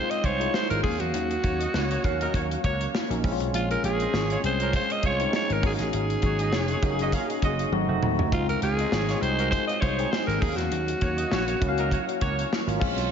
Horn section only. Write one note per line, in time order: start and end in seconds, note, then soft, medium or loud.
0.24 0.48 G#3 medium
0.24 0.48 F4 loud
0.24 0.48 C5 loud
1.43 1.56 A#3 medium
1.43 1.56 F#4 medium
1.43 1.57 C#5 medium
1.59 1.70 A#3 medium
1.59 1.71 F#4 medium
1.59 1.70 D#5 medium
1.74 1.87 A#3 medium
1.74 1.87 F#4 medium
1.74 1.87 C#5 medium
1.90 2.01 A#3 medium
1.90 2.01 F#4 medium
1.90 2.01 C#5 medium
2.20 2.31 F#3 medium
2.20 2.31 D#4 loud
2.20 2.31 A#4 loud
2.34 2.47 A#3 medium
2.34 2.47 F#4 medium
2.34 2.47 C#5 medium
2.63 2.88 A#3 loud
2.63 2.88 F#4 medium
2.63 2.87 C#5 loud
3.84 3.96 G#3 medium
3.84 3.97 F4 medium
3.84 3.96 C#5 medium
4.00 4.11 D#4 medium
4.00 4.11 C5 medium
4.00 4.11 D#5 medium
4.14 4.27 G#3 medium
4.14 4.27 F4 medium
4.14 4.27 C#5 medium
4.31 4.42 G#3 medium
4.31 4.42 F4 medium
4.31 4.41 C#5 medium
4.60 4.71 F3 medium
4.60 4.71 C#4 loud
4.60 4.71 A#4 loud
4.75 4.87 G#3 medium
4.75 4.87 F4 medium
4.75 4.87 C#5 medium
5.05 5.28 G#3 medium
5.05 5.28 F4 loud
5.05 5.28 C#5 loud
6.24 6.37 G#3 medium
6.24 6.36 F#4 medium
6.24 6.37 C#5 medium
6.39 6.51 G#3 medium
6.39 6.51 F#4 medium
6.39 6.50 D#5 medium
6.54 6.67 G#3 medium
6.54 6.67 F#4 medium
6.54 6.67 C#5 medium
6.71 6.81 G#3 medium
6.71 6.81 F#4 medium
6.71 6.82 C#5 medium
7.00 7.11 G#3 medium
7.00 7.11 F#4 loud
7.00 7.11 D#5 loud
7.13 7.26 F4 medium
7.13 7.26 C#5 medium
7.13 7.26 F5 medium
7.43 7.68 G#3 medium
7.43 7.67 F#4 medium
7.43 7.67 D#5 loud
8.62 8.75 G#3 medium
8.62 8.76 F4 medium
8.62 8.75 C#5 medium
8.79 8.90 D#4 medium
8.79 8.90 C5 medium
8.79 8.90 D#5 medium
8.92 9.05 G#3 medium
8.92 9.05 F4 medium
8.92 9.05 C#5 medium
9.09 9.20 G#3 medium
9.09 9.20 F4 medium
9.09 9.20 C#5 medium
9.38 9.50 A#3 loud
9.38 9.50 F#4 loud
9.38 9.49 A#4 loud
9.51 9.65 G#3 medium
9.51 9.65 F4 medium
9.51 9.65 C5 medium
9.81 10.05 G#3 medium
9.81 10.05 F4 medium
9.81 10.05 C5 loud
11.00 11.14 A#3 medium
11.00 11.13 F#4 medium
11.00 11.14 C#5 medium
11.17 11.28 A#3 medium
11.17 11.28 F#4 medium
11.17 11.28 D#5 medium
11.30 11.44 A#3 medium
11.30 11.44 F#4 medium
11.30 11.44 C#5 medium
11.47 11.59 A#3 medium
11.47 11.59 F#4 medium
11.47 11.58 C#5 medium
11.77 11.89 F#3 loud
11.77 11.89 D#4 loud
11.77 11.89 A#4 loud
11.91 12.05 A#3 medium
11.91 12.04 F#4 medium
11.91 12.04 C#5 medium
12.21 12.45 A#3 loud
12.21 12.45 F#4 medium
12.21 12.45 C#5 loud